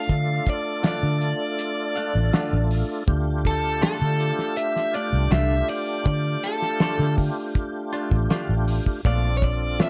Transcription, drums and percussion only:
0.09 kick, closed hi-hat
0.46 kick, closed hi-hat
0.84 snare, closed hi-hat
1.21 closed hi-hat
1.59 closed hi-hat
1.96 closed hi-hat
2.33 snare, closed hi-hat
2.71 open hi-hat
3.08 kick, closed hi-hat
3.45 kick, closed hi-hat
3.83 snare, closed hi-hat
4.20 closed hi-hat
4.39 snare
4.57 closed hi-hat
4.76 snare
4.94 closed hi-hat
5.32 snare, closed hi-hat
5.68 open hi-hat
6.06 kick, closed hi-hat
6.43 closed hi-hat
6.62 snare
6.80 snare, closed hi-hat
7.00 snare
7.18 kick, open hi-hat
7.55 kick, closed hi-hat
7.93 closed hi-hat
8.11 kick
8.30 snare, closed hi-hat
8.68 open hi-hat
8.86 kick
9.05 kick, closed hi-hat
9.42 kick, closed hi-hat
9.80 snare, closed hi-hat

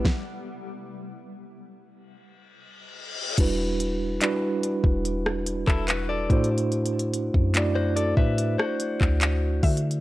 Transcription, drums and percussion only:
0.05 kick, snare
3.38 kick, closed hi-hat, crash
3.80 closed hi-hat
4.21 clap, closed hi-hat
4.63 closed hi-hat
4.84 kick
5.05 closed hi-hat
5.26 cross-stick
5.46 closed hi-hat
5.68 kick, clap
5.88 clap, closed hi-hat
6.30 kick, closed hi-hat
6.44 closed hi-hat
6.58 closed hi-hat
6.72 closed hi-hat
6.86 closed hi-hat
6.99 closed hi-hat
7.14 closed hi-hat
7.34 kick
7.54 clap, closed hi-hat
7.97 closed hi-hat
8.17 kick
8.38 closed hi-hat
8.59 cross-stick
8.80 closed hi-hat
9.01 kick, clap
9.21 clap, closed hi-hat
9.63 kick, closed hi-hat, open hi-hat
9.77 closed hi-hat
9.91 closed hi-hat

